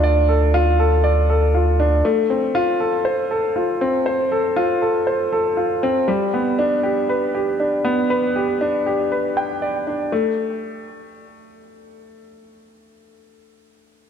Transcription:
X:1
M:4/4
L:1/8
Q:1/4=119
K:Gmix
V:1 name="Grand piano"
d A F A d A F D | A, C F A c A F C | c A F A c A F C | G, B, D G B G D B, |
B G D G B g d D | A, z6 z | z8 |]
V:2 name="Analog synth bass" clef=bass
D,,8 | z8 | z8 | z8 |
z8 | z8 | z8 |]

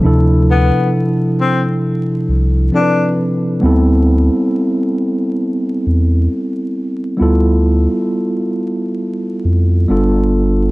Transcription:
X:1
M:4/4
L:1/16
Q:"Swing 16ths" 1/4=67
K:Ddor
V:1 name="Tine electric piano"
[C,F,DEA]12 [F,CDEAB]4 | [G,B,CEA]16 | [G,B,EFA]12 [G,B,DFA]4 |]
V:2 name="Tenor saxophone"
z2 B,2 z2 C z4 z D2 z2 | z16 | z16 |]
V:3 name="Sub bass" clef=bass
D,,3 z6 z C,,2 z4 | D,,3 z6 z E,,2 z4 | D,,3 z6 z F,,2 G,,,4 |]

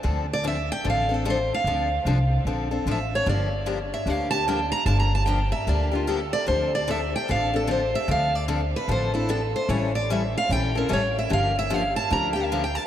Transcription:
X:1
M:4/4
L:1/16
Q:"Swing" 1/4=149
K:Dm
V:1 name="Steel-string acoustic guitar"
z2 d2 e2 g2 f2 A2 c2 f2- | f8 z4 e2 ^c2 | d6 e2 f2 a2 g2 b2 | (3a2 b2 a2 g2 e2 d2 F2 A2 d2 |
c2 d2 e2 g2 f2 A2 c2 e2 | f2 d2 z2 =B2 c2 E2 A2 c2 | ^c2 d2 e2 f2 g2 B2 c2 e2 | f2 e2 f2 a2 b2 g e f g a z |]
V:2 name="Steel-string acoustic guitar"
[D,F,CDA]2 z2 [D,F,CDA]2 z2 [D,F,CDA]2 [CDA]2 [D,F,CDA]2 z2 | [D,F,CDA]2 z2 [D,F,CDA]2 z2 [D,F,CDA]2 [CDA]2 [D,F,CDA]2 z2 | [D,F,B,DG]2 z2 [D,F,B,DG]2 z2 [D,F,B,DG]2 [B,DG]2 [D,F,B,DG]2 z2 | [D,F,B,DG]2 z2 [D,F,B,DG]2 z2 [D,F,B,DG]2 [B,DG]2 [D,F,B,DG]2 z2 |
[D,F,CDA]2 z2 [D,F,CDA]2 z2 [D,F,CDA]2 [CDA]2 [D,F,CDA]2 z2 | [D,F,CDA]2 z2 [D,F,CDA]2 z2 [D,F,CDA]2 [CDA]2 [D,F,CDA]2 z2 | [E,G,^CEA]2 z2 [E,G,CEA]2 z2 [E,G,CEA]2 [CEA]2 [E,G,CEA]2 z2 | [D,F,B,DG]2 z2 [D,F,B,DG]2 z2 [D,F,B,DG]2 [B,DG]2 [D,F,B,DG]2 z2 |]
V:3 name="Upright bass" clef=bass
D,,8 A,,,8 | D,,4 C,,4 B,,,4 A,,,4 | G,,,8 D,,8 | G,,,8 D,,8 |
D,,8 A,,,8 | D,,8 A,,,8 | A,,,8 B,,,4 A,,,4 | G,,,8 D,,8 |]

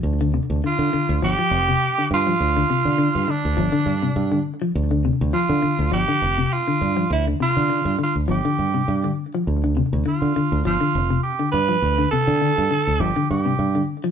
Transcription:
X:1
M:4/4
L:1/16
Q:"Swing 16ths" 1/4=102
K:Ddor
V:1 name="Tenor saxophone"
z4 F4 G6 F2- | F6 D8 z2 | z4 F4 G4 F4 | E2 F4 F2 G6 z2 |
z4 F4 F4 G2 B2- | B2 A6 G2 G4 z2 |]
V:2 name="Clean electric guitar" clef=bass
z D, C,2 D,2 D,2 F, F,2 C,2 D,2 F, | z D, C,2 D,2 D,2 F, D,2 C,2 D,2 F, | z D, C,2 F,2 D,2 F, D,2 C,2 D,2 F, | z D, C,2 D,2 D,2 F, D,2 C,2 D,2 F, |
z D, C,2 D,2 D,2 F, D,2 C,2 D,2 F, | z D, C,2 D,2 D,2 F, D,2 C,2 D,2 F, |]
V:3 name="Fingered electric bass" clef=bass
D,,3 D,, z D, z D,, G,,, z F,,,2 z2 G,,2 | D,,2 z D,2 G,, z D,, G,,, z G,,2 G,,2 z2 | D,,3 D,, z D, z D,, G,,, z F,,,2 z2 G,,2 | D,,2 z D,2 G,, z D,, G,,, z G,,2 G,,2 z2 |
D,,3 D,, z D, z D,, G,,, z F,,,2 z2 G,,2 | D,,2 z D,2 G,, z D,, G,,, z G,,2 G,,2 z2 |]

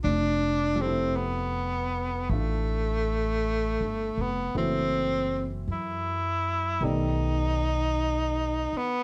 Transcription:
X:1
M:4/4
L:1/16
Q:"Swing" 1/4=53
K:Flyd
V:1 name="Tenor saxophone"
D2 C2 B,4 A,6 B,2 | C3 z E4 ^D6 B,2 |]
V:2 name="Upright piano"
z2 [C,F,G,A,E]6 [A,DF]8 | [E,^F,A,CE]8 [^D,G,A,B,=d]8 |]
V:3 name="Upright bass" clef=bass
F,,,8 A,,,4- (3A,,,2 G,,,2 F,,,2 | ^F,,,4 ^F,,4 B,,,6 z2 |]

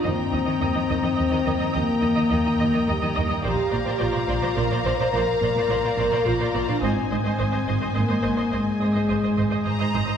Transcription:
X:1
M:3/4
L:1/16
Q:1/4=106
K:Bbmix
V:1 name="Violin section"
z12 | z12 | z12 | z12 |
z12 | z8 b4 |]
V:2 name="Violin section"
[gb]12- | [gb]12 | [fb]12- | [fb]12 |
a12- | a8- a2 z2 |]
V:3 name="Viola section"
e z e e e e e e e e e e | e z e e e e e e e e e e | [cd] z [cd] [cd] [cd] [cd] [cd] [cd] [cd] [cd] [cd] [cd] | [cd] z [cd] [cd] [cd] [cd] [cd] [cd] [cd] [cd] [cd] [cd] |
[ce] z [ce] [ce] [ce] [ce] [ce] [ce] [ce] [ce] [ce] [ce] | [ce] z [ce] [ce] [ce] [ce] [ce] [ce] [ce] [ce] [ce] [ce] |]
V:4 name="French horn section"
C12 | B,8 G,2 z2 | G4 F4 B2 c c | B8 F3 D |
C8 B,4 | A,8- A,2 z2 |]
V:5 name="Cello section" clef=bass
E, z E, E, E, E, E, E, E, E, E, E, | E, z E, E, E, E, E, E, E, E, E, E, | B,, z B,, B,, B,, B,, B,, B,, B,, B,, B,, B,, | B,, z B,, B,, B,, B,, B,, B,, B,, B,, B,, B,, |
A,, z A,, A,, A,, A,, A,, A,, A,, A,, A,, A,, | A,, z A,, A,, A,, A,, A,, A,, A,, A,, A,, A,, |]
V:6 name="Double bass section" clef=bass
E,, z E,, z E,, z E,, z E,, z E,, z | E,, z E,, z E,, z E,, z E,, z E,, z | B,,, z B,,, z B,,, z B,,, z B,,, z B,,, z | B,,, z B,,, z B,,, z B,,, z B,,, z B,,, z |
A,,, z A,,, z A,,, z A,,, z A,,, z A,,, z | A,,, z A,,, z A,,, z A,,, z A,,, z A,,, z |]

